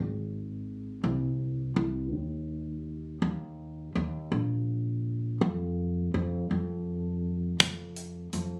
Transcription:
0.00 1.00 G#1 medium
1.04 1.73 C2 medium
1.76 2.13 C2 medium
2.13 3.18 D#2 medium
3.22 3.91 D#2 medium
3.95 4.30 D#2 medium
4.32 5.37 A#1 medium
5.41 6.10 F2 medium
6.14 6.48 F2 medium
6.51 7.56 F2 medium
7.60 8.29 F2 medium
7.60 kick medium
7.60 closed hi-hat medium
7.96 closed hi-hat soft
8.33 8.60 F2 medium
8.33 closed hi-hat soft

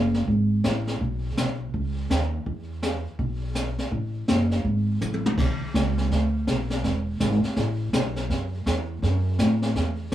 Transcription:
0.00 0.23 F#1 medium
0.14 snare soft
0.28 0.59 G#1 medium
0.28 brush sweep soft
0.28 kick soft
0.64 0.96 A1 medium
0.64 snare medium
0.64 hi-hat pedal medium
0.87 snare soft
1.00 1.30 B1 medium
1.00 brush sweep soft
1.00 kick soft
1.37 1.68 B1 medium
1.37 snare medium
1.37 hi-hat pedal medium
1.74 2.05 C#2 medium
1.74 brush sweep medium
1.74 kick soft
2.10 2.41 D#2 medium
2.10 snare medium
2.10 hi-hat pedal medium
2.46 3.05 E2 medium
2.46 brush sweep medium
2.46 kick soft
2.83 snare medium
2.83 hi-hat pedal medium
3.19 3.77 B1 medium
3.19 brush sweep soft
3.19 kick soft
3.55 snare medium
3.55 hi-hat pedal medium
3.78 snare soft
3.91 4.21 A1 medium
3.91 brush sweep soft
3.91 kick soft
4.28 4.60 F#1 medium
4.28 snare medium
4.28 hi-hat pedal soft
4.51 snare soft
4.65 4.96 G#1 medium
4.65 brush sweep medium
4.65 kick soft
5.01 5.32 A1 medium
5.01 hi-hat pedal medium
5.01 high tom soft
5.14 high tom medium
5.26 mid tom medium
5.38 5.59 B1 medium
5.38 brush sweep medium
5.38 kick medium
5.38 snare soft
5.38 crash medium
5.61 muted upright bass stroke soft
5.74 6.10 C#2 medium
5.74 kick soft
5.74 snare medium
5.74 hi-hat pedal medium
5.98 snare soft
6.11 6.46 D2 medium
6.11 brush sweep soft
6.11 kick soft
6.11 snare soft
6.47 6.83 B1 medium
6.47 kick soft
6.47 snare medium
6.47 hi-hat pedal medium
6.70 snare soft
6.84 7.19 E1 medium
6.84 brush sweep medium
6.84 kick soft
6.84 snare soft
7.20 7.42 G#1 medium
7.20 kick soft
7.20 snare medium
7.20 hi-hat pedal medium
7.44 muted upright bass stroke soft
7.44 snare soft
7.56 7.92 A1 medium
7.56 brush sweep soft
7.56 kick soft
7.56 snare soft
7.93 8.28 B1 medium
7.93 kick soft
7.93 snare medium
7.93 hi-hat pedal medium
8.16 snare soft
8.30 8.65 F#2 medium
8.30 brush sweep soft
8.30 kick soft
8.30 snare soft
8.66 9.01 E2 medium
8.66 kick soft
8.66 snare medium
8.66 hi-hat pedal medium
9.02 9.38 F#2 medium
9.02 brush sweep soft
9.02 kick soft
9.02 snare soft
9.39 9.74 A2 medium
9.39 kick soft
9.39 snare medium
9.39 hi-hat pedal medium
9.62 snare soft
9.75 10.11 E2 medium
9.75 brush sweep soft
9.75 kick soft
9.75 snare soft

